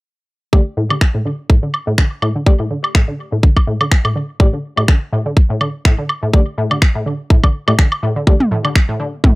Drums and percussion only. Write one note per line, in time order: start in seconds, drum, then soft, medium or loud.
0.53 kick loud
0.90 low woodblock soft
1.01 finger snap medium
1.01 kick loud
1.50 kick loud
1.74 low woodblock soft
1.98 finger snap medium
1.98 kick loud
2.22 low woodblock soft
2.46 kick loud
2.84 low woodblock medium
2.95 finger snap medium
2.95 kick loud
3.43 kick loud
3.57 kick medium
3.57 low woodblock medium
3.81 low woodblock medium
3.92 finger snap medium
3.92 kick loud
4.05 low woodblock medium
4.40 kick loud
4.77 low woodblock medium
4.88 finger snap medium
4.88 kick loud
5.37 kick loud
5.61 low woodblock soft
5.85 finger snap medium
5.85 kick loud
6.09 low woodblock medium
6.34 kick loud
6.71 low woodblock medium
6.82 finger snap medium
6.82 kick loud
7.30 kick loud
7.44 kick medium
7.44 low woodblock medium
7.68 low woodblock medium
7.79 finger snap medium
7.79 kick loud
7.92 low woodblock medium
8.27 kick loud
8.40 mid tom medium
8.65 low woodblock medium
8.75 finger snap medium
8.75 kick loud
9.24 kick loud
9.24 mid tom medium